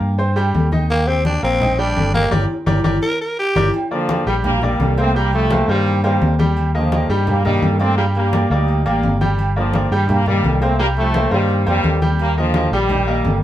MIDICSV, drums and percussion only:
0, 0, Header, 1, 2, 480
1, 0, Start_track
1, 0, Key_signature, -2, "minor"
1, 0, Tempo, 352941
1, 1225, Time_signature, 4, 2, 24, 8
1, 18270, End_track
2, 0, Start_track
2, 0, Title_t, "Drums"
2, 15, Note_on_c, 9, 63, 34
2, 151, Note_off_c, 9, 63, 0
2, 256, Note_on_c, 9, 63, 41
2, 262, Note_on_c, 9, 68, 86
2, 392, Note_off_c, 9, 63, 0
2, 398, Note_off_c, 9, 68, 0
2, 498, Note_on_c, 9, 63, 36
2, 507, Note_on_c, 9, 68, 116
2, 634, Note_off_c, 9, 63, 0
2, 643, Note_off_c, 9, 68, 0
2, 742, Note_on_c, 9, 63, 84
2, 748, Note_on_c, 9, 66, 82
2, 878, Note_off_c, 9, 63, 0
2, 884, Note_off_c, 9, 66, 0
2, 977, Note_on_c, 9, 63, 85
2, 988, Note_on_c, 9, 68, 86
2, 1113, Note_off_c, 9, 63, 0
2, 1124, Note_off_c, 9, 68, 0
2, 1225, Note_on_c, 9, 63, 40
2, 1230, Note_on_c, 9, 68, 109
2, 1361, Note_off_c, 9, 63, 0
2, 1366, Note_off_c, 9, 68, 0
2, 1461, Note_on_c, 9, 63, 40
2, 1597, Note_off_c, 9, 63, 0
2, 1700, Note_on_c, 9, 63, 94
2, 1711, Note_on_c, 9, 66, 61
2, 1711, Note_on_c, 9, 68, 84
2, 1836, Note_off_c, 9, 63, 0
2, 1847, Note_off_c, 9, 66, 0
2, 1847, Note_off_c, 9, 68, 0
2, 1950, Note_on_c, 9, 63, 34
2, 2086, Note_off_c, 9, 63, 0
2, 2189, Note_on_c, 9, 63, 38
2, 2189, Note_on_c, 9, 64, 93
2, 2197, Note_on_c, 9, 68, 112
2, 2325, Note_off_c, 9, 63, 0
2, 2325, Note_off_c, 9, 64, 0
2, 2333, Note_off_c, 9, 68, 0
2, 2424, Note_on_c, 9, 63, 36
2, 2560, Note_off_c, 9, 63, 0
2, 2672, Note_on_c, 9, 63, 83
2, 2674, Note_on_c, 9, 66, 84
2, 2674, Note_on_c, 9, 68, 84
2, 2808, Note_off_c, 9, 63, 0
2, 2810, Note_off_c, 9, 66, 0
2, 2810, Note_off_c, 9, 68, 0
2, 2910, Note_on_c, 9, 63, 75
2, 2915, Note_on_c, 9, 68, 112
2, 3046, Note_off_c, 9, 63, 0
2, 3051, Note_off_c, 9, 68, 0
2, 3148, Note_on_c, 9, 63, 104
2, 3158, Note_on_c, 9, 65, 102
2, 3284, Note_off_c, 9, 63, 0
2, 3294, Note_off_c, 9, 65, 0
2, 3628, Note_on_c, 9, 63, 103
2, 3643, Note_on_c, 9, 65, 103
2, 3764, Note_off_c, 9, 63, 0
2, 3779, Note_off_c, 9, 65, 0
2, 3868, Note_on_c, 9, 63, 96
2, 3880, Note_on_c, 9, 65, 99
2, 4004, Note_off_c, 9, 63, 0
2, 4016, Note_off_c, 9, 65, 0
2, 4839, Note_on_c, 9, 63, 106
2, 4841, Note_on_c, 9, 65, 104
2, 4975, Note_off_c, 9, 63, 0
2, 4977, Note_off_c, 9, 65, 0
2, 5082, Note_on_c, 9, 63, 39
2, 5083, Note_on_c, 9, 68, 111
2, 5218, Note_off_c, 9, 63, 0
2, 5219, Note_off_c, 9, 68, 0
2, 5327, Note_on_c, 9, 63, 38
2, 5463, Note_off_c, 9, 63, 0
2, 5562, Note_on_c, 9, 63, 105
2, 5568, Note_on_c, 9, 66, 64
2, 5568, Note_on_c, 9, 68, 89
2, 5698, Note_off_c, 9, 63, 0
2, 5704, Note_off_c, 9, 66, 0
2, 5704, Note_off_c, 9, 68, 0
2, 5804, Note_on_c, 9, 63, 36
2, 5940, Note_off_c, 9, 63, 0
2, 6040, Note_on_c, 9, 63, 37
2, 6040, Note_on_c, 9, 64, 95
2, 6045, Note_on_c, 9, 68, 109
2, 6176, Note_off_c, 9, 63, 0
2, 6176, Note_off_c, 9, 64, 0
2, 6181, Note_off_c, 9, 68, 0
2, 6280, Note_on_c, 9, 63, 37
2, 6280, Note_on_c, 9, 64, 76
2, 6416, Note_off_c, 9, 63, 0
2, 6416, Note_off_c, 9, 64, 0
2, 6527, Note_on_c, 9, 63, 89
2, 6530, Note_on_c, 9, 66, 83
2, 6530, Note_on_c, 9, 68, 87
2, 6663, Note_off_c, 9, 63, 0
2, 6666, Note_off_c, 9, 66, 0
2, 6666, Note_off_c, 9, 68, 0
2, 6768, Note_on_c, 9, 68, 112
2, 6904, Note_off_c, 9, 68, 0
2, 7013, Note_on_c, 9, 63, 37
2, 7149, Note_off_c, 9, 63, 0
2, 7247, Note_on_c, 9, 68, 87
2, 7248, Note_on_c, 9, 63, 37
2, 7383, Note_off_c, 9, 68, 0
2, 7384, Note_off_c, 9, 63, 0
2, 7487, Note_on_c, 9, 63, 102
2, 7493, Note_on_c, 9, 66, 61
2, 7493, Note_on_c, 9, 68, 112
2, 7623, Note_off_c, 9, 63, 0
2, 7629, Note_off_c, 9, 66, 0
2, 7629, Note_off_c, 9, 68, 0
2, 7735, Note_on_c, 9, 63, 36
2, 7871, Note_off_c, 9, 63, 0
2, 7973, Note_on_c, 9, 68, 87
2, 7978, Note_on_c, 9, 63, 38
2, 8109, Note_off_c, 9, 68, 0
2, 8114, Note_off_c, 9, 63, 0
2, 8215, Note_on_c, 9, 68, 112
2, 8220, Note_on_c, 9, 63, 37
2, 8351, Note_off_c, 9, 68, 0
2, 8356, Note_off_c, 9, 63, 0
2, 8453, Note_on_c, 9, 66, 84
2, 8454, Note_on_c, 9, 63, 90
2, 8589, Note_off_c, 9, 66, 0
2, 8590, Note_off_c, 9, 63, 0
2, 8694, Note_on_c, 9, 68, 90
2, 8700, Note_on_c, 9, 63, 87
2, 8830, Note_off_c, 9, 68, 0
2, 8836, Note_off_c, 9, 63, 0
2, 8932, Note_on_c, 9, 68, 109
2, 8939, Note_on_c, 9, 63, 40
2, 9068, Note_off_c, 9, 68, 0
2, 9075, Note_off_c, 9, 63, 0
2, 9175, Note_on_c, 9, 63, 40
2, 9311, Note_off_c, 9, 63, 0
2, 9412, Note_on_c, 9, 66, 61
2, 9412, Note_on_c, 9, 68, 90
2, 9413, Note_on_c, 9, 63, 97
2, 9548, Note_off_c, 9, 66, 0
2, 9548, Note_off_c, 9, 68, 0
2, 9549, Note_off_c, 9, 63, 0
2, 9653, Note_on_c, 9, 63, 36
2, 9789, Note_off_c, 9, 63, 0
2, 9887, Note_on_c, 9, 68, 110
2, 9891, Note_on_c, 9, 63, 38
2, 9891, Note_on_c, 9, 64, 95
2, 10023, Note_off_c, 9, 68, 0
2, 10027, Note_off_c, 9, 63, 0
2, 10027, Note_off_c, 9, 64, 0
2, 10135, Note_on_c, 9, 63, 37
2, 10135, Note_on_c, 9, 64, 80
2, 10271, Note_off_c, 9, 63, 0
2, 10271, Note_off_c, 9, 64, 0
2, 10369, Note_on_c, 9, 63, 86
2, 10371, Note_on_c, 9, 66, 84
2, 10371, Note_on_c, 9, 68, 84
2, 10505, Note_off_c, 9, 63, 0
2, 10507, Note_off_c, 9, 66, 0
2, 10507, Note_off_c, 9, 68, 0
2, 10601, Note_on_c, 9, 68, 112
2, 10737, Note_off_c, 9, 68, 0
2, 10849, Note_on_c, 9, 63, 37
2, 10985, Note_off_c, 9, 63, 0
2, 11086, Note_on_c, 9, 68, 87
2, 11087, Note_on_c, 9, 63, 38
2, 11222, Note_off_c, 9, 68, 0
2, 11223, Note_off_c, 9, 63, 0
2, 11327, Note_on_c, 9, 66, 65
2, 11327, Note_on_c, 9, 68, 111
2, 11328, Note_on_c, 9, 63, 101
2, 11463, Note_off_c, 9, 66, 0
2, 11463, Note_off_c, 9, 68, 0
2, 11464, Note_off_c, 9, 63, 0
2, 11569, Note_on_c, 9, 63, 35
2, 11705, Note_off_c, 9, 63, 0
2, 11808, Note_on_c, 9, 68, 81
2, 11810, Note_on_c, 9, 63, 39
2, 11944, Note_off_c, 9, 68, 0
2, 11946, Note_off_c, 9, 63, 0
2, 12043, Note_on_c, 9, 63, 38
2, 12046, Note_on_c, 9, 68, 115
2, 12179, Note_off_c, 9, 63, 0
2, 12182, Note_off_c, 9, 68, 0
2, 12284, Note_on_c, 9, 63, 84
2, 12289, Note_on_c, 9, 66, 85
2, 12420, Note_off_c, 9, 63, 0
2, 12425, Note_off_c, 9, 66, 0
2, 12527, Note_on_c, 9, 63, 88
2, 12530, Note_on_c, 9, 68, 89
2, 12663, Note_off_c, 9, 63, 0
2, 12666, Note_off_c, 9, 68, 0
2, 12766, Note_on_c, 9, 68, 109
2, 12767, Note_on_c, 9, 63, 36
2, 12902, Note_off_c, 9, 68, 0
2, 12903, Note_off_c, 9, 63, 0
2, 13007, Note_on_c, 9, 63, 37
2, 13143, Note_off_c, 9, 63, 0
2, 13239, Note_on_c, 9, 63, 92
2, 13248, Note_on_c, 9, 66, 64
2, 13248, Note_on_c, 9, 68, 89
2, 13375, Note_off_c, 9, 63, 0
2, 13384, Note_off_c, 9, 66, 0
2, 13384, Note_off_c, 9, 68, 0
2, 13482, Note_on_c, 9, 63, 37
2, 13618, Note_off_c, 9, 63, 0
2, 13720, Note_on_c, 9, 63, 37
2, 13720, Note_on_c, 9, 64, 93
2, 13723, Note_on_c, 9, 68, 108
2, 13856, Note_off_c, 9, 63, 0
2, 13856, Note_off_c, 9, 64, 0
2, 13859, Note_off_c, 9, 68, 0
2, 13957, Note_on_c, 9, 63, 37
2, 13957, Note_on_c, 9, 64, 73
2, 14093, Note_off_c, 9, 63, 0
2, 14093, Note_off_c, 9, 64, 0
2, 14200, Note_on_c, 9, 63, 83
2, 14205, Note_on_c, 9, 66, 84
2, 14205, Note_on_c, 9, 68, 92
2, 14336, Note_off_c, 9, 63, 0
2, 14341, Note_off_c, 9, 66, 0
2, 14341, Note_off_c, 9, 68, 0
2, 14440, Note_on_c, 9, 68, 112
2, 14576, Note_off_c, 9, 68, 0
2, 14676, Note_on_c, 9, 63, 38
2, 14812, Note_off_c, 9, 63, 0
2, 14914, Note_on_c, 9, 68, 88
2, 14918, Note_on_c, 9, 63, 38
2, 15050, Note_off_c, 9, 68, 0
2, 15054, Note_off_c, 9, 63, 0
2, 15153, Note_on_c, 9, 63, 97
2, 15155, Note_on_c, 9, 66, 64
2, 15155, Note_on_c, 9, 68, 105
2, 15289, Note_off_c, 9, 63, 0
2, 15291, Note_off_c, 9, 66, 0
2, 15291, Note_off_c, 9, 68, 0
2, 15395, Note_on_c, 9, 63, 35
2, 15531, Note_off_c, 9, 63, 0
2, 15628, Note_on_c, 9, 68, 86
2, 15632, Note_on_c, 9, 63, 39
2, 15764, Note_off_c, 9, 68, 0
2, 15768, Note_off_c, 9, 63, 0
2, 15866, Note_on_c, 9, 68, 117
2, 15871, Note_on_c, 9, 63, 37
2, 16002, Note_off_c, 9, 68, 0
2, 16007, Note_off_c, 9, 63, 0
2, 16103, Note_on_c, 9, 63, 88
2, 16109, Note_on_c, 9, 66, 86
2, 16239, Note_off_c, 9, 63, 0
2, 16245, Note_off_c, 9, 66, 0
2, 16342, Note_on_c, 9, 68, 88
2, 16347, Note_on_c, 9, 63, 89
2, 16478, Note_off_c, 9, 68, 0
2, 16483, Note_off_c, 9, 63, 0
2, 16583, Note_on_c, 9, 68, 106
2, 16586, Note_on_c, 9, 63, 38
2, 16719, Note_off_c, 9, 68, 0
2, 16722, Note_off_c, 9, 63, 0
2, 16817, Note_on_c, 9, 63, 38
2, 16953, Note_off_c, 9, 63, 0
2, 17054, Note_on_c, 9, 63, 102
2, 17065, Note_on_c, 9, 66, 64
2, 17065, Note_on_c, 9, 68, 85
2, 17190, Note_off_c, 9, 63, 0
2, 17201, Note_off_c, 9, 66, 0
2, 17201, Note_off_c, 9, 68, 0
2, 17290, Note_on_c, 9, 63, 35
2, 17426, Note_off_c, 9, 63, 0
2, 17533, Note_on_c, 9, 63, 41
2, 17533, Note_on_c, 9, 64, 96
2, 17540, Note_on_c, 9, 68, 114
2, 17669, Note_off_c, 9, 63, 0
2, 17669, Note_off_c, 9, 64, 0
2, 17676, Note_off_c, 9, 68, 0
2, 17772, Note_on_c, 9, 63, 38
2, 17908, Note_off_c, 9, 63, 0
2, 18014, Note_on_c, 9, 63, 88
2, 18018, Note_on_c, 9, 66, 86
2, 18018, Note_on_c, 9, 68, 85
2, 18150, Note_off_c, 9, 63, 0
2, 18154, Note_off_c, 9, 66, 0
2, 18154, Note_off_c, 9, 68, 0
2, 18270, End_track
0, 0, End_of_file